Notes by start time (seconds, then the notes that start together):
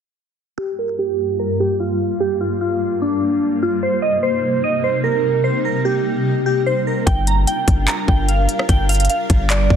0.58 G2 G3 A#3 F4 G4
0.79 A#4
0.99 G4
1.39 A#4
1.60 G4
1.80 F4
2.20 G4
2.41 F4
2.61 F4
3.02 D4
3.63 F4
3.83 C3 D#4 C5
4.02 D#5
4.23 C5
4.64 D#5
4.84 C5
5.04 A#4
5.44 C5
5.65 A#4
5.85 G4
6.46 G4
6.66 C5
6.87 A#4
7.06 G1 G3 D4 F4 A#4 G5, kick, closed hi-hat
7.27 A#5, closed hi-hat
7.47 G5, closed hi-hat
7.68 G1, kick, closed hi-hat
7.88 A#5, clap, closed hi-hat
8.08 G1 G5, kick
8.28 F5, closed hi-hat
8.49 closed hi-hat
8.59 cross-stick
8.69 G1 G5, kick, closed hi-hat
8.89 F5, closed hi-hat, open hi-hat
8.95 closed hi-hat
9.00 closed hi-hat
9.05 closed hi-hat
9.10 F5, closed hi-hat
9.30 G1, kick, closed hi-hat
9.50 D5, clap, closed hi-hat
9.70 G1, kick